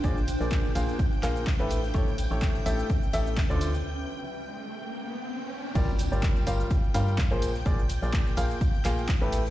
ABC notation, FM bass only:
X:1
M:4/4
L:1/16
Q:"Swing 16ths" 1/4=126
K:Bb
V:1 name="FM bass" clef=bass
B,,,3 B,,,3 B,,, z3 B,,,3 A,,,3 | A,,,3 A,,,3 A,,, z3 A,,,3 D,,3 | z16 | G,,,3 G,,,3 G,,, z3 G,,3 B,,,3 |
B,,,3 B,,,3 B,,, z3 B,,,3 A,,,3 |]